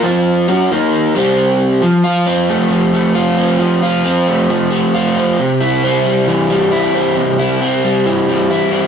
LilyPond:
\new Staff \with { instrumentName = "Overdriven electric guitar" } { \time 4/4 \key f \major \tempo 4 = 135 <f c' f'>4 <fis cis' fis'>8 <ees bes ees'>4 <c g c'>4. | f8 f'8 c'8 a8 f8 a8 f'8 c'8 | f8 f'8 c'8 a8 f8 a8 f'8 c'8 | c8 e'8 c'8 g8 e8 g8 e'8 c'8 |
c8 e'8 c'8 g8 e8 g8 e'8 c'8 | }